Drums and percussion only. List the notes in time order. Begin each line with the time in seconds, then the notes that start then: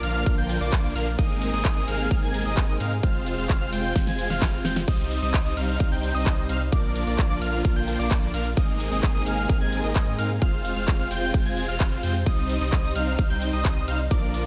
0.03 open hi-hat, ride, shaker
0.15 closed hi-hat, shaker
0.26 kick, closed hi-hat, shaker
0.38 closed hi-hat, shaker
0.49 open hi-hat, ride, shaker
0.61 closed hi-hat, shaker
0.73 kick, clap, closed hi-hat, shaker
0.85 shaker
0.96 open hi-hat, ride, shaker
1.07 closed hi-hat, shaker
1.19 kick, closed hi-hat, shaker
1.30 closed hi-hat, shaker
1.42 open hi-hat, ride, shaker
1.53 closed hi-hat, shaker
1.65 kick, clap, closed hi-hat, shaker
1.77 shaker
1.88 open hi-hat, ride, shaker
1.99 closed hi-hat, shaker
2.11 kick, closed hi-hat, shaker
2.23 closed hi-hat, shaker
2.34 open hi-hat, ride, shaker
2.46 closed hi-hat, shaker
2.57 kick, clap, closed hi-hat, shaker
2.69 shaker
2.80 open hi-hat, ride, shaker
2.92 closed hi-hat, shaker
3.03 kick, closed hi-hat, shaker
3.15 closed hi-hat, shaker
3.26 open hi-hat, ride, shaker
3.38 open hi-hat, shaker
3.49 kick, clap, closed hi-hat, shaker
3.62 shaker
3.73 open hi-hat, ride, shaker
3.84 closed hi-hat, shaker
3.96 kick, snare, closed hi-hat, shaker
4.07 snare, closed hi-hat, shaker
4.19 open hi-hat, ride, shaker
4.30 snare, closed hi-hat, shaker
4.42 kick, snare, clap, closed hi-hat, shaker
4.53 closed hi-hat, shaker
4.65 snare, open hi-hat, ride, shaker
4.76 snare, closed hi-hat, shaker
4.88 kick, closed hi-hat, crash, shaker
4.99 closed hi-hat, shaker
5.11 open hi-hat, ride, shaker
5.23 closed hi-hat, shaker
5.34 kick, clap, closed hi-hat, shaker
5.46 shaker
5.57 open hi-hat, ride, shaker
5.69 closed hi-hat, shaker
5.80 kick, closed hi-hat, shaker
5.92 closed hi-hat, shaker
6.03 open hi-hat, ride, shaker
6.15 closed hi-hat, shaker
6.26 kick, clap, closed hi-hat, shaker
6.38 shaker
6.49 open hi-hat, ride, shaker
6.61 closed hi-hat, shaker
6.72 kick, closed hi-hat, shaker
6.84 closed hi-hat, shaker
6.96 open hi-hat, ride, shaker
7.07 open hi-hat, shaker
7.19 kick, clap, closed hi-hat, shaker
7.31 shaker
7.42 open hi-hat, ride, shaker
7.53 closed hi-hat, shaker
7.65 kick, closed hi-hat, shaker
7.76 closed hi-hat, shaker
7.88 open hi-hat, ride, shaker
7.99 closed hi-hat, shaker
8.11 kick, clap, closed hi-hat, shaker
8.23 shaker
8.34 open hi-hat, ride, shaker
8.45 closed hi-hat, shaker
8.57 kick, closed hi-hat, shaker
8.69 closed hi-hat, shaker
8.80 open hi-hat, ride, shaker
8.92 closed hi-hat, shaker
9.03 kick, clap, closed hi-hat, shaker
9.15 shaker
9.26 open hi-hat, ride, shaker
9.38 closed hi-hat, shaker
9.49 kick, closed hi-hat, shaker
9.61 closed hi-hat, shaker
9.72 open hi-hat, ride, shaker
9.84 closed hi-hat, shaker
9.96 kick, clap, closed hi-hat, shaker
10.07 shaker
10.19 open hi-hat, ride, shaker
10.30 closed hi-hat, shaker
10.42 kick, closed hi-hat, shaker
10.53 closed hi-hat, shaker
10.65 open hi-hat, ride, shaker
10.76 open hi-hat, shaker
10.88 kick, clap, closed hi-hat, shaker
11.00 shaker
11.11 open hi-hat, ride, shaker
11.23 closed hi-hat, shaker
11.34 kick, closed hi-hat, shaker
11.46 closed hi-hat, shaker
11.57 open hi-hat, ride, shaker
11.69 closed hi-hat, shaker
11.80 kick, clap, closed hi-hat, shaker
11.92 shaker
12.03 open hi-hat, ride, shaker
12.15 closed hi-hat, shaker
12.26 kick, closed hi-hat, shaker
12.38 closed hi-hat, shaker
12.49 open hi-hat, ride, shaker
12.61 closed hi-hat, shaker
12.72 kick, clap, closed hi-hat, shaker
12.84 shaker
12.95 open hi-hat, ride, shaker
13.07 closed hi-hat, shaker
13.19 kick, closed hi-hat, shaker
13.30 closed hi-hat, shaker
13.42 open hi-hat, ride, shaker
13.53 closed hi-hat, shaker
13.65 kick, clap, closed hi-hat, shaker
13.77 shaker
13.88 open hi-hat, ride, shaker
13.99 closed hi-hat, shaker
14.11 kick, closed hi-hat, shaker
14.23 closed hi-hat, shaker
14.34 open hi-hat, ride, shaker